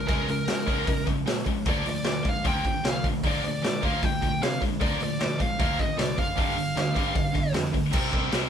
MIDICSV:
0, 0, Header, 1, 6, 480
1, 0, Start_track
1, 0, Tempo, 392413
1, 109, Time_signature, 4, 2, 24, 8
1, 10387, End_track
2, 0, Start_track
2, 0, Title_t, "Lead electric guitar"
2, 0, Program_c, 0, 29
2, 96, Note_on_c, 0, 70, 86
2, 350, Note_off_c, 0, 70, 0
2, 373, Note_on_c, 0, 70, 81
2, 1274, Note_off_c, 0, 70, 0
2, 2074, Note_on_c, 0, 74, 76
2, 2278, Note_off_c, 0, 74, 0
2, 2317, Note_on_c, 0, 74, 84
2, 2790, Note_off_c, 0, 74, 0
2, 2798, Note_on_c, 0, 77, 95
2, 3020, Note_off_c, 0, 77, 0
2, 3025, Note_on_c, 0, 79, 105
2, 3504, Note_off_c, 0, 79, 0
2, 3542, Note_on_c, 0, 77, 97
2, 3734, Note_off_c, 0, 77, 0
2, 4002, Note_on_c, 0, 74, 90
2, 4203, Note_off_c, 0, 74, 0
2, 4252, Note_on_c, 0, 74, 84
2, 4672, Note_off_c, 0, 74, 0
2, 4714, Note_on_c, 0, 77, 92
2, 4945, Note_off_c, 0, 77, 0
2, 4945, Note_on_c, 0, 79, 101
2, 5410, Note_off_c, 0, 79, 0
2, 5421, Note_on_c, 0, 77, 99
2, 5632, Note_off_c, 0, 77, 0
2, 5893, Note_on_c, 0, 74, 86
2, 6107, Note_off_c, 0, 74, 0
2, 6158, Note_on_c, 0, 74, 85
2, 6584, Note_off_c, 0, 74, 0
2, 6624, Note_on_c, 0, 77, 91
2, 7088, Note_on_c, 0, 75, 81
2, 7103, Note_off_c, 0, 77, 0
2, 7320, Note_off_c, 0, 75, 0
2, 7325, Note_on_c, 0, 74, 84
2, 7542, Note_off_c, 0, 74, 0
2, 7564, Note_on_c, 0, 77, 94
2, 7782, Note_off_c, 0, 77, 0
2, 7826, Note_on_c, 0, 77, 78
2, 9198, Note_off_c, 0, 77, 0
2, 10387, End_track
3, 0, Start_track
3, 0, Title_t, "Distorted electric guitar"
3, 0, Program_c, 1, 30
3, 112, Note_on_c, 1, 49, 77
3, 117, Note_on_c, 1, 53, 92
3, 126, Note_on_c, 1, 56, 91
3, 330, Note_off_c, 1, 49, 0
3, 339, Note_off_c, 1, 53, 0
3, 344, Note_off_c, 1, 56, 0
3, 345, Note_on_c, 1, 49, 65
3, 355, Note_on_c, 1, 53, 68
3, 564, Note_off_c, 1, 49, 0
3, 569, Note_off_c, 1, 53, 0
3, 583, Note_on_c, 1, 49, 66
3, 593, Note_on_c, 1, 53, 74
3, 799, Note_off_c, 1, 49, 0
3, 808, Note_off_c, 1, 53, 0
3, 814, Note_on_c, 1, 49, 86
3, 826, Note_on_c, 1, 53, 99
3, 831, Note_on_c, 1, 56, 82
3, 1048, Note_off_c, 1, 49, 0
3, 1054, Note_off_c, 1, 53, 0
3, 1057, Note_off_c, 1, 56, 0
3, 1069, Note_on_c, 1, 49, 84
3, 1077, Note_on_c, 1, 53, 90
3, 1286, Note_off_c, 1, 49, 0
3, 1291, Note_off_c, 1, 53, 0
3, 1302, Note_on_c, 1, 49, 70
3, 1308, Note_on_c, 1, 53, 70
3, 1523, Note_off_c, 1, 49, 0
3, 1526, Note_off_c, 1, 53, 0
3, 1545, Note_on_c, 1, 49, 67
3, 1550, Note_on_c, 1, 53, 75
3, 1765, Note_off_c, 1, 49, 0
3, 1768, Note_off_c, 1, 53, 0
3, 1796, Note_on_c, 1, 49, 69
3, 1807, Note_on_c, 1, 53, 64
3, 2010, Note_off_c, 1, 49, 0
3, 2016, Note_off_c, 1, 53, 0
3, 2030, Note_on_c, 1, 50, 81
3, 2031, Note_on_c, 1, 53, 79
3, 2035, Note_on_c, 1, 58, 88
3, 2257, Note_off_c, 1, 50, 0
3, 2258, Note_off_c, 1, 53, 0
3, 2260, Note_off_c, 1, 58, 0
3, 2272, Note_on_c, 1, 50, 53
3, 2280, Note_on_c, 1, 53, 77
3, 2489, Note_off_c, 1, 50, 0
3, 2493, Note_off_c, 1, 53, 0
3, 2505, Note_on_c, 1, 50, 66
3, 2513, Note_on_c, 1, 53, 76
3, 2716, Note_off_c, 1, 50, 0
3, 2725, Note_off_c, 1, 53, 0
3, 2731, Note_on_c, 1, 50, 65
3, 2740, Note_on_c, 1, 53, 72
3, 2958, Note_off_c, 1, 50, 0
3, 2963, Note_off_c, 1, 53, 0
3, 2987, Note_on_c, 1, 50, 94
3, 2989, Note_on_c, 1, 53, 98
3, 2997, Note_on_c, 1, 58, 106
3, 3216, Note_off_c, 1, 50, 0
3, 3217, Note_off_c, 1, 53, 0
3, 3221, Note_off_c, 1, 58, 0
3, 3238, Note_on_c, 1, 50, 69
3, 3239, Note_on_c, 1, 53, 76
3, 3452, Note_off_c, 1, 50, 0
3, 3453, Note_off_c, 1, 53, 0
3, 3473, Note_on_c, 1, 50, 78
3, 3481, Note_on_c, 1, 53, 76
3, 3690, Note_off_c, 1, 50, 0
3, 3694, Note_off_c, 1, 53, 0
3, 3727, Note_on_c, 1, 50, 58
3, 3733, Note_on_c, 1, 53, 81
3, 3937, Note_off_c, 1, 50, 0
3, 3940, Note_off_c, 1, 53, 0
3, 3967, Note_on_c, 1, 50, 78
3, 3973, Note_on_c, 1, 53, 78
3, 3984, Note_on_c, 1, 58, 90
3, 4182, Note_off_c, 1, 50, 0
3, 4190, Note_off_c, 1, 53, 0
3, 4195, Note_off_c, 1, 58, 0
3, 4196, Note_on_c, 1, 50, 72
3, 4203, Note_on_c, 1, 53, 64
3, 4412, Note_off_c, 1, 50, 0
3, 4415, Note_off_c, 1, 53, 0
3, 4441, Note_on_c, 1, 50, 68
3, 4444, Note_on_c, 1, 53, 77
3, 4654, Note_off_c, 1, 50, 0
3, 4656, Note_off_c, 1, 53, 0
3, 4679, Note_on_c, 1, 50, 91
3, 4688, Note_on_c, 1, 53, 100
3, 4698, Note_on_c, 1, 58, 102
3, 4903, Note_off_c, 1, 50, 0
3, 4907, Note_off_c, 1, 53, 0
3, 4912, Note_off_c, 1, 58, 0
3, 4929, Note_on_c, 1, 50, 79
3, 4937, Note_on_c, 1, 53, 94
3, 5138, Note_off_c, 1, 50, 0
3, 5142, Note_off_c, 1, 53, 0
3, 5172, Note_on_c, 1, 50, 70
3, 5178, Note_on_c, 1, 53, 82
3, 5379, Note_off_c, 1, 50, 0
3, 5382, Note_off_c, 1, 53, 0
3, 5404, Note_on_c, 1, 50, 72
3, 5410, Note_on_c, 1, 53, 81
3, 5615, Note_off_c, 1, 50, 0
3, 5618, Note_off_c, 1, 53, 0
3, 5649, Note_on_c, 1, 50, 69
3, 5662, Note_on_c, 1, 53, 73
3, 5858, Note_off_c, 1, 50, 0
3, 5864, Note_off_c, 1, 53, 0
3, 5871, Note_on_c, 1, 50, 92
3, 5882, Note_on_c, 1, 53, 80
3, 5886, Note_on_c, 1, 58, 86
3, 6098, Note_off_c, 1, 50, 0
3, 6103, Note_off_c, 1, 53, 0
3, 6105, Note_off_c, 1, 58, 0
3, 6126, Note_on_c, 1, 50, 65
3, 6134, Note_on_c, 1, 53, 69
3, 6336, Note_off_c, 1, 50, 0
3, 6340, Note_off_c, 1, 53, 0
3, 6367, Note_on_c, 1, 50, 61
3, 6370, Note_on_c, 1, 53, 80
3, 6576, Note_off_c, 1, 50, 0
3, 6578, Note_off_c, 1, 53, 0
3, 6597, Note_on_c, 1, 50, 66
3, 6607, Note_on_c, 1, 53, 75
3, 6811, Note_off_c, 1, 50, 0
3, 6816, Note_off_c, 1, 53, 0
3, 6842, Note_on_c, 1, 50, 93
3, 6851, Note_on_c, 1, 53, 104
3, 6863, Note_on_c, 1, 58, 111
3, 7059, Note_off_c, 1, 50, 0
3, 7068, Note_off_c, 1, 53, 0
3, 7074, Note_off_c, 1, 58, 0
3, 7074, Note_on_c, 1, 50, 72
3, 7085, Note_on_c, 1, 53, 76
3, 7289, Note_off_c, 1, 50, 0
3, 7295, Note_off_c, 1, 53, 0
3, 7314, Note_on_c, 1, 50, 75
3, 7316, Note_on_c, 1, 53, 81
3, 7529, Note_off_c, 1, 50, 0
3, 7530, Note_off_c, 1, 53, 0
3, 7553, Note_on_c, 1, 50, 62
3, 7561, Note_on_c, 1, 53, 80
3, 7768, Note_off_c, 1, 50, 0
3, 7772, Note_off_c, 1, 53, 0
3, 7792, Note_on_c, 1, 43, 79
3, 7800, Note_on_c, 1, 50, 82
3, 7805, Note_on_c, 1, 55, 87
3, 8017, Note_off_c, 1, 43, 0
3, 8022, Note_off_c, 1, 50, 0
3, 8024, Note_off_c, 1, 55, 0
3, 8045, Note_on_c, 1, 43, 60
3, 8045, Note_on_c, 1, 50, 71
3, 8254, Note_off_c, 1, 43, 0
3, 8254, Note_off_c, 1, 50, 0
3, 8276, Note_on_c, 1, 50, 88
3, 8280, Note_on_c, 1, 43, 71
3, 8489, Note_off_c, 1, 50, 0
3, 8492, Note_off_c, 1, 43, 0
3, 8505, Note_on_c, 1, 43, 90
3, 8511, Note_on_c, 1, 50, 85
3, 8516, Note_on_c, 1, 55, 88
3, 8728, Note_off_c, 1, 43, 0
3, 8736, Note_off_c, 1, 50, 0
3, 8739, Note_off_c, 1, 55, 0
3, 8742, Note_on_c, 1, 43, 78
3, 8752, Note_on_c, 1, 50, 82
3, 8962, Note_off_c, 1, 43, 0
3, 8968, Note_off_c, 1, 50, 0
3, 8981, Note_on_c, 1, 43, 77
3, 8984, Note_on_c, 1, 50, 78
3, 9202, Note_off_c, 1, 43, 0
3, 9203, Note_off_c, 1, 50, 0
3, 9224, Note_on_c, 1, 43, 69
3, 9225, Note_on_c, 1, 50, 73
3, 9443, Note_off_c, 1, 43, 0
3, 9443, Note_off_c, 1, 50, 0
3, 9456, Note_on_c, 1, 43, 52
3, 9464, Note_on_c, 1, 50, 68
3, 9679, Note_off_c, 1, 43, 0
3, 9682, Note_off_c, 1, 50, 0
3, 9707, Note_on_c, 1, 55, 82
3, 9709, Note_on_c, 1, 48, 82
3, 9715, Note_on_c, 1, 60, 76
3, 9719, Note_on_c, 1, 64, 83
3, 9926, Note_off_c, 1, 48, 0
3, 9928, Note_off_c, 1, 55, 0
3, 9941, Note_on_c, 1, 48, 72
3, 9943, Note_off_c, 1, 60, 0
3, 9943, Note_on_c, 1, 55, 73
3, 9946, Note_off_c, 1, 64, 0
3, 9948, Note_on_c, 1, 60, 70
3, 9961, Note_on_c, 1, 64, 78
3, 10160, Note_off_c, 1, 48, 0
3, 10167, Note_off_c, 1, 55, 0
3, 10174, Note_on_c, 1, 48, 90
3, 10181, Note_on_c, 1, 55, 82
3, 10182, Note_off_c, 1, 60, 0
3, 10182, Note_off_c, 1, 64, 0
3, 10187, Note_on_c, 1, 60, 95
3, 10197, Note_on_c, 1, 64, 103
3, 10387, Note_off_c, 1, 48, 0
3, 10387, Note_off_c, 1, 55, 0
3, 10387, Note_off_c, 1, 60, 0
3, 10387, Note_off_c, 1, 64, 0
3, 10387, End_track
4, 0, Start_track
4, 0, Title_t, "Distorted electric guitar"
4, 0, Program_c, 2, 30
4, 91, Note_on_c, 2, 61, 101
4, 326, Note_off_c, 2, 61, 0
4, 334, Note_on_c, 2, 56, 71
4, 559, Note_off_c, 2, 56, 0
4, 582, Note_on_c, 2, 56, 87
4, 796, Note_off_c, 2, 56, 0
4, 821, Note_on_c, 2, 61, 91
4, 1052, Note_off_c, 2, 61, 0
4, 1063, Note_on_c, 2, 56, 66
4, 1281, Note_off_c, 2, 56, 0
4, 1296, Note_on_c, 2, 56, 66
4, 1520, Note_off_c, 2, 56, 0
4, 1540, Note_on_c, 2, 56, 82
4, 1750, Note_off_c, 2, 56, 0
4, 1764, Note_on_c, 2, 56, 78
4, 1995, Note_off_c, 2, 56, 0
4, 2024, Note_on_c, 2, 46, 86
4, 2254, Note_off_c, 2, 46, 0
4, 2270, Note_on_c, 2, 46, 67
4, 2488, Note_off_c, 2, 46, 0
4, 2508, Note_on_c, 2, 46, 81
4, 2727, Note_off_c, 2, 46, 0
4, 2766, Note_on_c, 2, 46, 69
4, 2976, Note_off_c, 2, 46, 0
4, 2993, Note_on_c, 2, 46, 80
4, 3219, Note_off_c, 2, 46, 0
4, 3243, Note_on_c, 2, 46, 61
4, 3455, Note_off_c, 2, 46, 0
4, 3488, Note_on_c, 2, 46, 69
4, 3697, Note_off_c, 2, 46, 0
4, 3720, Note_on_c, 2, 46, 70
4, 3933, Note_off_c, 2, 46, 0
4, 3954, Note_on_c, 2, 46, 99
4, 4180, Note_off_c, 2, 46, 0
4, 4198, Note_on_c, 2, 46, 70
4, 4412, Note_off_c, 2, 46, 0
4, 4429, Note_on_c, 2, 46, 84
4, 4648, Note_off_c, 2, 46, 0
4, 4665, Note_on_c, 2, 46, 88
4, 4895, Note_off_c, 2, 46, 0
4, 4913, Note_on_c, 2, 46, 64
4, 5130, Note_off_c, 2, 46, 0
4, 5146, Note_on_c, 2, 46, 68
4, 5366, Note_off_c, 2, 46, 0
4, 5400, Note_on_c, 2, 46, 69
4, 5603, Note_off_c, 2, 46, 0
4, 5618, Note_on_c, 2, 46, 67
4, 5842, Note_off_c, 2, 46, 0
4, 5866, Note_on_c, 2, 46, 97
4, 6096, Note_off_c, 2, 46, 0
4, 6121, Note_on_c, 2, 46, 64
4, 6333, Note_off_c, 2, 46, 0
4, 6353, Note_on_c, 2, 46, 79
4, 6566, Note_off_c, 2, 46, 0
4, 6580, Note_on_c, 2, 46, 67
4, 6803, Note_off_c, 2, 46, 0
4, 6835, Note_on_c, 2, 46, 80
4, 7052, Note_off_c, 2, 46, 0
4, 7067, Note_on_c, 2, 46, 69
4, 7286, Note_off_c, 2, 46, 0
4, 7301, Note_on_c, 2, 46, 76
4, 7523, Note_off_c, 2, 46, 0
4, 7539, Note_on_c, 2, 46, 74
4, 7762, Note_off_c, 2, 46, 0
4, 10387, End_track
5, 0, Start_track
5, 0, Title_t, "Picked electric bass"
5, 0, Program_c, 3, 34
5, 105, Note_on_c, 3, 37, 95
5, 329, Note_off_c, 3, 37, 0
5, 336, Note_on_c, 3, 37, 78
5, 574, Note_off_c, 3, 37, 0
5, 587, Note_on_c, 3, 44, 86
5, 820, Note_off_c, 3, 44, 0
5, 827, Note_on_c, 3, 37, 81
5, 1060, Note_off_c, 3, 37, 0
5, 1067, Note_on_c, 3, 37, 86
5, 1300, Note_off_c, 3, 37, 0
5, 1311, Note_on_c, 3, 37, 72
5, 1535, Note_off_c, 3, 37, 0
5, 1542, Note_on_c, 3, 46, 83
5, 1778, Note_off_c, 3, 46, 0
5, 1792, Note_on_c, 3, 44, 75
5, 2019, Note_off_c, 3, 44, 0
5, 2026, Note_on_c, 3, 38, 97
5, 2260, Note_off_c, 3, 38, 0
5, 2274, Note_on_c, 3, 38, 83
5, 2505, Note_off_c, 3, 38, 0
5, 2511, Note_on_c, 3, 38, 84
5, 2743, Note_off_c, 3, 38, 0
5, 2749, Note_on_c, 3, 44, 84
5, 2982, Note_off_c, 3, 44, 0
5, 2992, Note_on_c, 3, 38, 94
5, 3224, Note_off_c, 3, 38, 0
5, 3233, Note_on_c, 3, 32, 68
5, 3465, Note_off_c, 3, 32, 0
5, 3480, Note_on_c, 3, 36, 92
5, 3708, Note_off_c, 3, 36, 0
5, 3713, Note_on_c, 3, 38, 79
5, 3944, Note_off_c, 3, 38, 0
5, 3956, Note_on_c, 3, 38, 89
5, 4186, Note_off_c, 3, 38, 0
5, 4194, Note_on_c, 3, 38, 90
5, 4425, Note_off_c, 3, 38, 0
5, 4437, Note_on_c, 3, 44, 90
5, 4667, Note_off_c, 3, 44, 0
5, 4683, Note_on_c, 3, 38, 83
5, 4910, Note_off_c, 3, 38, 0
5, 4927, Note_on_c, 3, 38, 96
5, 5152, Note_off_c, 3, 38, 0
5, 5162, Note_on_c, 3, 38, 82
5, 5383, Note_off_c, 3, 38, 0
5, 5390, Note_on_c, 3, 48, 90
5, 5623, Note_off_c, 3, 48, 0
5, 5647, Note_on_c, 3, 44, 82
5, 5871, Note_off_c, 3, 44, 0
5, 5879, Note_on_c, 3, 38, 99
5, 6107, Note_off_c, 3, 38, 0
5, 6116, Note_on_c, 3, 38, 78
5, 6345, Note_off_c, 3, 38, 0
5, 6356, Note_on_c, 3, 38, 85
5, 6586, Note_off_c, 3, 38, 0
5, 6603, Note_on_c, 3, 44, 87
5, 6829, Note_off_c, 3, 44, 0
5, 6841, Note_on_c, 3, 38, 93
5, 7068, Note_off_c, 3, 38, 0
5, 7083, Note_on_c, 3, 32, 75
5, 7304, Note_off_c, 3, 32, 0
5, 7312, Note_on_c, 3, 36, 99
5, 7543, Note_off_c, 3, 36, 0
5, 7555, Note_on_c, 3, 30, 87
5, 7784, Note_off_c, 3, 30, 0
5, 7797, Note_on_c, 3, 31, 87
5, 8007, Note_off_c, 3, 31, 0
5, 8015, Note_on_c, 3, 31, 80
5, 8253, Note_off_c, 3, 31, 0
5, 8268, Note_on_c, 3, 38, 87
5, 8500, Note_off_c, 3, 38, 0
5, 8517, Note_on_c, 3, 31, 86
5, 8744, Note_off_c, 3, 31, 0
5, 8753, Note_on_c, 3, 31, 91
5, 8977, Note_off_c, 3, 31, 0
5, 8984, Note_on_c, 3, 31, 77
5, 9209, Note_off_c, 3, 31, 0
5, 9216, Note_on_c, 3, 41, 95
5, 9453, Note_off_c, 3, 41, 0
5, 9464, Note_on_c, 3, 38, 78
5, 9697, Note_off_c, 3, 38, 0
5, 9709, Note_on_c, 3, 36, 91
5, 9883, Note_off_c, 3, 36, 0
5, 9938, Note_on_c, 3, 36, 79
5, 10116, Note_off_c, 3, 36, 0
5, 10187, Note_on_c, 3, 36, 83
5, 10361, Note_off_c, 3, 36, 0
5, 10387, End_track
6, 0, Start_track
6, 0, Title_t, "Drums"
6, 102, Note_on_c, 9, 46, 68
6, 106, Note_on_c, 9, 36, 116
6, 224, Note_off_c, 9, 46, 0
6, 228, Note_off_c, 9, 36, 0
6, 346, Note_on_c, 9, 46, 53
6, 468, Note_off_c, 9, 46, 0
6, 582, Note_on_c, 9, 46, 76
6, 589, Note_on_c, 9, 38, 102
6, 704, Note_off_c, 9, 46, 0
6, 712, Note_off_c, 9, 38, 0
6, 822, Note_on_c, 9, 46, 55
6, 827, Note_on_c, 9, 36, 84
6, 944, Note_off_c, 9, 46, 0
6, 949, Note_off_c, 9, 36, 0
6, 1068, Note_on_c, 9, 36, 115
6, 1072, Note_on_c, 9, 46, 79
6, 1191, Note_off_c, 9, 36, 0
6, 1195, Note_off_c, 9, 46, 0
6, 1304, Note_on_c, 9, 46, 54
6, 1310, Note_on_c, 9, 36, 80
6, 1426, Note_off_c, 9, 46, 0
6, 1432, Note_off_c, 9, 36, 0
6, 1554, Note_on_c, 9, 46, 85
6, 1562, Note_on_c, 9, 38, 112
6, 1677, Note_off_c, 9, 46, 0
6, 1684, Note_off_c, 9, 38, 0
6, 1784, Note_on_c, 9, 46, 54
6, 1790, Note_on_c, 9, 36, 77
6, 1906, Note_off_c, 9, 46, 0
6, 1912, Note_off_c, 9, 36, 0
6, 2024, Note_on_c, 9, 46, 78
6, 2030, Note_on_c, 9, 36, 109
6, 2147, Note_off_c, 9, 46, 0
6, 2152, Note_off_c, 9, 36, 0
6, 2270, Note_on_c, 9, 46, 60
6, 2392, Note_off_c, 9, 46, 0
6, 2496, Note_on_c, 9, 46, 75
6, 2503, Note_on_c, 9, 38, 110
6, 2618, Note_off_c, 9, 46, 0
6, 2625, Note_off_c, 9, 38, 0
6, 2744, Note_on_c, 9, 46, 53
6, 2753, Note_on_c, 9, 36, 81
6, 2866, Note_off_c, 9, 46, 0
6, 2875, Note_off_c, 9, 36, 0
6, 2992, Note_on_c, 9, 46, 75
6, 2997, Note_on_c, 9, 36, 109
6, 3114, Note_off_c, 9, 46, 0
6, 3119, Note_off_c, 9, 36, 0
6, 3236, Note_on_c, 9, 46, 53
6, 3238, Note_on_c, 9, 36, 79
6, 3359, Note_off_c, 9, 46, 0
6, 3360, Note_off_c, 9, 36, 0
6, 3479, Note_on_c, 9, 46, 70
6, 3486, Note_on_c, 9, 38, 123
6, 3601, Note_off_c, 9, 46, 0
6, 3609, Note_off_c, 9, 38, 0
6, 3720, Note_on_c, 9, 36, 83
6, 3723, Note_on_c, 9, 46, 50
6, 3843, Note_off_c, 9, 36, 0
6, 3846, Note_off_c, 9, 46, 0
6, 3959, Note_on_c, 9, 36, 103
6, 3961, Note_on_c, 9, 46, 76
6, 4081, Note_off_c, 9, 36, 0
6, 4083, Note_off_c, 9, 46, 0
6, 4207, Note_on_c, 9, 46, 56
6, 4329, Note_off_c, 9, 46, 0
6, 4452, Note_on_c, 9, 46, 75
6, 4459, Note_on_c, 9, 38, 110
6, 4574, Note_off_c, 9, 46, 0
6, 4581, Note_off_c, 9, 38, 0
6, 4687, Note_on_c, 9, 36, 80
6, 4693, Note_on_c, 9, 46, 53
6, 4810, Note_off_c, 9, 36, 0
6, 4815, Note_off_c, 9, 46, 0
6, 4928, Note_on_c, 9, 36, 104
6, 4935, Note_on_c, 9, 46, 78
6, 5050, Note_off_c, 9, 36, 0
6, 5057, Note_off_c, 9, 46, 0
6, 5166, Note_on_c, 9, 36, 73
6, 5170, Note_on_c, 9, 46, 54
6, 5289, Note_off_c, 9, 36, 0
6, 5292, Note_off_c, 9, 46, 0
6, 5414, Note_on_c, 9, 46, 83
6, 5421, Note_on_c, 9, 38, 116
6, 5536, Note_off_c, 9, 46, 0
6, 5544, Note_off_c, 9, 38, 0
6, 5648, Note_on_c, 9, 36, 79
6, 5655, Note_on_c, 9, 46, 58
6, 5770, Note_off_c, 9, 36, 0
6, 5777, Note_off_c, 9, 46, 0
6, 5882, Note_on_c, 9, 46, 73
6, 5885, Note_on_c, 9, 36, 104
6, 6004, Note_off_c, 9, 46, 0
6, 6007, Note_off_c, 9, 36, 0
6, 6118, Note_on_c, 9, 46, 59
6, 6241, Note_off_c, 9, 46, 0
6, 6363, Note_on_c, 9, 46, 71
6, 6371, Note_on_c, 9, 38, 108
6, 6486, Note_off_c, 9, 46, 0
6, 6493, Note_off_c, 9, 38, 0
6, 6607, Note_on_c, 9, 36, 83
6, 6607, Note_on_c, 9, 46, 56
6, 6729, Note_off_c, 9, 36, 0
6, 6729, Note_off_c, 9, 46, 0
6, 6845, Note_on_c, 9, 46, 79
6, 6846, Note_on_c, 9, 36, 117
6, 6967, Note_off_c, 9, 46, 0
6, 6968, Note_off_c, 9, 36, 0
6, 7087, Note_on_c, 9, 36, 81
6, 7096, Note_on_c, 9, 46, 52
6, 7209, Note_off_c, 9, 36, 0
6, 7218, Note_off_c, 9, 46, 0
6, 7321, Note_on_c, 9, 46, 82
6, 7328, Note_on_c, 9, 38, 120
6, 7443, Note_off_c, 9, 46, 0
6, 7451, Note_off_c, 9, 38, 0
6, 7561, Note_on_c, 9, 36, 78
6, 7561, Note_on_c, 9, 46, 55
6, 7683, Note_off_c, 9, 36, 0
6, 7683, Note_off_c, 9, 46, 0
6, 7802, Note_on_c, 9, 36, 100
6, 7804, Note_on_c, 9, 46, 76
6, 7924, Note_off_c, 9, 36, 0
6, 7927, Note_off_c, 9, 46, 0
6, 8048, Note_on_c, 9, 46, 58
6, 8171, Note_off_c, 9, 46, 0
6, 8278, Note_on_c, 9, 46, 67
6, 8285, Note_on_c, 9, 38, 108
6, 8400, Note_off_c, 9, 46, 0
6, 8408, Note_off_c, 9, 38, 0
6, 8516, Note_on_c, 9, 36, 83
6, 8516, Note_on_c, 9, 46, 55
6, 8638, Note_off_c, 9, 36, 0
6, 8639, Note_off_c, 9, 46, 0
6, 8750, Note_on_c, 9, 46, 76
6, 8753, Note_on_c, 9, 36, 112
6, 8873, Note_off_c, 9, 46, 0
6, 8875, Note_off_c, 9, 36, 0
6, 8989, Note_on_c, 9, 46, 51
6, 8992, Note_on_c, 9, 36, 81
6, 9112, Note_off_c, 9, 46, 0
6, 9114, Note_off_c, 9, 36, 0
6, 9221, Note_on_c, 9, 46, 77
6, 9228, Note_on_c, 9, 38, 113
6, 9343, Note_off_c, 9, 46, 0
6, 9351, Note_off_c, 9, 38, 0
6, 9469, Note_on_c, 9, 36, 77
6, 9471, Note_on_c, 9, 46, 58
6, 9592, Note_off_c, 9, 36, 0
6, 9593, Note_off_c, 9, 46, 0
6, 9696, Note_on_c, 9, 49, 111
6, 9707, Note_on_c, 9, 36, 117
6, 9819, Note_off_c, 9, 49, 0
6, 9830, Note_off_c, 9, 36, 0
6, 9945, Note_on_c, 9, 36, 91
6, 10068, Note_off_c, 9, 36, 0
6, 10178, Note_on_c, 9, 46, 62
6, 10185, Note_on_c, 9, 38, 114
6, 10300, Note_off_c, 9, 46, 0
6, 10307, Note_off_c, 9, 38, 0
6, 10387, End_track
0, 0, End_of_file